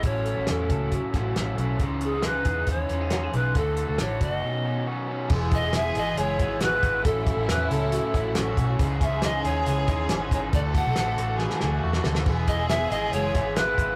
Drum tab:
CC |----------------|----------------|----------------|x---------------|
HH |x-x-x-x-x-x-x-x-|x-x-x-x-x-x-x-x-|x-x-x-x---------|--x-x-x-x-x-x-x-|
SD |----o-----o-o---|----o-------o---|----o-----------|----o-------o---|
BD |o-----o-o-o-----|o-----o-o-------|o-----o---------|o-o-------o---o-|

CC |----------------|----------------|----------------|x---------------|
HH |x-x-x-x-x-x-x-x-|x-x-x-x-x-x-x-x-|x-x-x-x---------|--x-x-x-x-x-x-x-|
SD |----o-------o---|----o-------o---|----o---ooo--ooo|----o-----o-o---|
BD |o-o-------o---o-|o-o-------o---o-|o-o-------------|o-o-------o---o-|